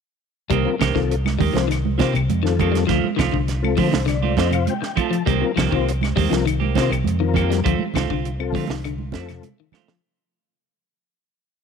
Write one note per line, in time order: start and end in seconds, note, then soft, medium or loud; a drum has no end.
0.50 0.65 C2 medium
0.50 0.69 D#3 medium
0.50 0.72 G3 medium
0.50 0.69 A#3 medium
0.50 0.69 C4 medium
0.50 0.69 G4 medium
0.50 kick medium
0.50 closed hi-hat medium
0.65 0.75 C4 medium
0.65 0.76 F4 medium
0.65 0.76 A#4 medium
0.79 0.95 C2 medium
0.79 0.91 C3 medium
0.79 0.98 D#3 medium
0.79 0.99 A#3 medium
0.79 0.98 C4 medium
0.79 0.99 G4 medium
0.79 kick medium
0.79 snare medium
0.79 closed hi-hat medium
0.79 low conga medium
0.79 claves medium
0.94 1.38 C2 medium
0.94 1.17 D#3 medium
0.94 1.15 C4 medium
0.94 1.16 F4 medium
0.94 1.16 A4 medium
0.94 kick medium
0.94 snare soft
1.11 closed hi-hat medium
1.26 snare soft
1.26 high conga medium
1.26 claves medium
1.39 1.53 D#2 medium
1.39 1.58 D#3 medium
1.39 1.50 G3 medium
1.39 1.58 A#3 medium
1.39 1.58 G4 medium
1.39 kick medium
1.39 open hi-hat medium
1.39 high conga medium
1.39 low conga medium
1.53 1.96 C2 medium
1.53 1.65 F3 medium
1.53 1.69 C4 medium
1.53 1.70 F4 medium
1.53 1.70 C5 medium
1.53 snare medium
1.53 closed hi-hat soft
1.53 high conga medium
1.68 1.91 D#3 medium
1.68 snare soft
1.68 closed hi-hat medium
1.68 claves medium
1.85 high conga medium
1.98 2.14 C3 medium
1.98 2.17 D#3 medium
1.98 2.17 A#3 medium
1.98 2.14 C4 medium
1.98 2.17 C4 medium
1.98 2.14 F4 medium
1.98 2.17 G4 medium
1.98 2.15 C5 medium
1.98 kick medium
1.98 snare medium
1.98 closed hi-hat medium
1.98 high conga medium
1.98 low conga medium
2.14 2.29 C2 medium
2.14 2.36 C3 medium
2.14 closed hi-hat soft
2.14 claves medium
2.29 2.86 F2 medium
2.29 closed hi-hat medium
2.29 high conga medium
2.43 2.65 D#3 medium
2.43 2.84 C4 medium
2.43 2.84 F4 medium
2.43 2.85 A4 medium
2.43 snare soft
2.59 2.77 D#3 medium
2.59 2.77 A#3 medium
2.59 2.78 C4 medium
2.59 2.78 G4 medium
2.59 kick medium
2.59 closed hi-hat soft
2.59 high conga medium
2.59 low conga medium
2.59 claves medium
2.72 2.84 G3 medium
2.72 closed hi-hat medium
2.76 snare soft
2.87 3.03 D2 loud
2.87 3.10 F3 medium
2.87 3.06 F3 medium
2.87 3.07 A3 medium
2.87 3.07 C4 medium
2.87 3.07 F4 medium
2.87 kick medium
2.87 snare soft
2.87 closed hi-hat medium
3.04 high conga medium
3.16 3.32 C2 medium
3.16 3.28 D#3 medium
3.16 3.36 F3 medium
3.16 3.36 A3 medium
3.16 3.36 C4 medium
3.16 3.36 F4 medium
3.16 kick medium
3.16 snare medium
3.16 closed hi-hat medium
3.16 low conga medium
3.16 claves medium
3.32 3.76 C2 medium
3.32 3.55 D3 medium
3.32 kick medium
3.48 snare soft
3.48 closed hi-hat medium
3.62 3.88 C4 medium
3.62 3.88 F4 medium
3.62 3.88 A4 medium
3.62 high conga medium
3.62 claves medium
3.77 3.92 D3 medium
3.77 3.88 F3 medium
3.77 3.96 F3 medium
3.77 3.96 A3 medium
3.77 3.96 C4 medium
3.77 3.96 F4 medium
3.77 4.06 C5 medium
3.77 kick medium
3.77 open hi-hat medium
3.77 high conga medium
3.77 low conga medium
3.92 4.35 C2 medium
3.92 4.03 D#3 medium
3.92 snare medium
3.92 high conga medium
4.06 4.29 D3 medium
4.06 4.36 D5 medium
4.06 snare soft
4.06 closed hi-hat medium
4.06 claves medium
4.22 4.36 A3 soft
4.22 4.37 C4 soft
4.22 4.37 F4 soft
4.22 high conga medium
4.37 4.66 F2 medium
4.37 4.55 F3 medium
4.37 4.55 A3 medium
4.37 4.56 C4 medium
4.37 4.73 C4 medium
4.37 4.56 F4 medium
4.37 4.74 F4 medium
4.37 4.74 C5 medium
4.37 4.52 D#5 medium
4.37 kick medium
4.37 snare medium
4.37 closed hi-hat soft
4.37 high conga medium
4.51 4.74 C3 medium
4.51 4.67 F5 medium
4.51 closed hi-hat soft
4.51 claves medium
4.67 4.96 G5 medium
4.67 closed hi-hat medium
4.67 high conga medium
4.82 muted clean electric guitar stroke medium
4.82 snare soft
4.96 5.14 F3 medium
4.96 5.15 A3 medium
4.96 5.15 C4 medium
4.96 5.15 F4 medium
4.96 5.25 A5 medium
4.96 kick medium
4.96 closed hi-hat soft
4.96 low conga medium
4.96 claves medium
5.11 5.22 F3 medium
5.11 closed hi-hat medium
5.26 5.41 C2 medium
5.26 5.44 D#3 medium
5.26 5.48 G3 medium
5.26 5.44 A#3 medium
5.26 5.45 C4 medium
5.26 5.45 G4 medium
5.26 kick medium
5.26 closed hi-hat medium
5.40 5.51 C4 medium
5.40 5.52 F4 medium
5.40 5.52 A#4 loud
5.56 5.71 C2 loud
5.56 5.72 D#3 medium
5.56 5.67 F3 medium
5.56 5.71 A#3 medium
5.56 5.70 C4 medium
5.56 5.70 G4 medium
5.56 kick medium
5.56 snare medium
5.56 closed hi-hat soft
5.56 claves medium
5.71 6.14 C2 medium
5.71 5.94 D#3 medium
5.71 5.90 A#3 soft
5.71 5.91 C4 medium
5.71 5.89 C4 soft
5.71 5.92 F4 medium
5.71 5.89 G4 medium
5.71 5.92 C5 medium
5.71 kick medium
5.88 closed hi-hat medium
6.01 snare soft
6.01 high conga medium
6.01 claves medium
6.16 6.30 D#2 medium
6.16 6.34 D#3 medium
6.16 6.27 G3 medium
6.16 6.34 A#3 medium
6.16 6.34 C4 medium
6.16 6.34 G4 medium
6.16 kick medium
6.16 open hi-hat medium
6.16 high conga medium
6.16 low conga medium
6.29 6.73 C2 medium
6.29 6.42 F3 medium
6.29 6.45 C4 medium
6.29 6.46 F4 medium
6.29 6.46 A#4 loud
6.29 snare medium
6.29 closed hi-hat medium
6.29 high conga medium
6.46 6.68 D#3 medium
6.46 closed hi-hat medium
6.46 claves medium
6.60 6.74 A#3 soft
6.60 6.75 C4 soft
6.60 6.75 G4 soft
6.60 high conga medium
6.75 6.89 C3 medium
6.75 6.93 D#3 medium
6.75 6.93 A#3 medium
6.75 6.91 C4 medium
6.75 6.94 C4 medium
6.75 6.91 F4 medium
6.75 6.94 G4 medium
6.75 6.91 C5 medium
6.75 kick medium
6.75 snare medium
6.75 closed hi-hat medium
6.75 high conga loud
6.90 7.04 C2 medium
6.90 7.13 C3 medium
6.90 closed hi-hat soft
6.90 claves medium
7.04 7.61 F2 medium
7.04 closed hi-hat medium
7.04 high conga medium
7.20 7.42 D#3 medium
7.20 7.60 C4 medium
7.20 7.60 F4 medium
7.20 7.61 A#4 medium
7.34 7.52 D#3 medium
7.34 7.53 A#3 medium
7.34 7.53 C4 medium
7.34 7.53 G4 medium
7.34 kick medium
7.34 closed hi-hat soft
7.34 high conga medium
7.34 low conga medium
7.34 claves medium
7.50 7.61 G3 medium
7.50 snare soft
7.50 closed hi-hat medium
7.64 7.78 D2 loud
7.64 7.87 F3 medium
7.64 7.82 A3 medium
7.64 7.82 C4 medium
7.64 7.82 F4 medium
7.64 kick medium
7.64 closed hi-hat medium
7.79 muted fingered electric bass stroke soft
7.79 high conga medium
7.94 8.09 C2 medium
7.94 8.06 D#3 medium
7.94 8.10 A3 medium
7.94 8.10 C4 medium
7.94 8.09 F4 medium
7.94 kick medium
7.94 snare medium
7.94 closed hi-hat medium
7.94 low conga medium
7.94 claves medium
8.10 8.52 C2 medium
8.10 8.32 D3 medium
8.10 8.28 C4 soft
8.10 8.28 F4 soft
8.10 kick medium
8.25 closed hi-hat medium
8.39 8.65 C4 medium
8.39 8.65 F4 medium
8.39 8.65 A4 loud
8.39 claves medium
8.53 8.67 D3 medium
8.53 8.66 F3 medium
8.53 8.72 A3 medium
8.53 8.72 C4 medium
8.53 8.73 F4 medium
8.53 kick medium
8.53 open hi-hat medium
8.53 high conga medium
8.53 low conga medium
8.68 9.11 C2 medium
8.68 8.81 D#3 medium
8.68 snare medium
8.68 high conga medium
8.84 9.07 D3 medium
8.84 closed hi-hat medium
8.84 claves medium
8.98 high conga medium
9.12 9.42 F2 medium
9.12 9.32 A3 medium
9.12 9.48 C4 medium
9.12 9.32 C4 medium
9.12 9.48 F4 medium
9.12 9.49 A4 medium
9.12 kick medium
9.12 snare medium
9.12 closed hi-hat soft
9.12 high conga medium
9.12 low conga medium
9.29 9.52 C3 medium
9.29 snare soft
9.29 closed hi-hat soft
9.29 claves medium
9.42 closed hi-hat medium
9.42 high conga medium
9.60 9.81 D#3 medium
9.72 9.91 A3 medium
9.72 9.91 C4 medium
9.72 9.92 F4 medium
9.72 snare soft
9.72 high conga medium
9.72 low conga medium
9.72 claves medium
9.88 9.99 F3 medium
9.88 snare medium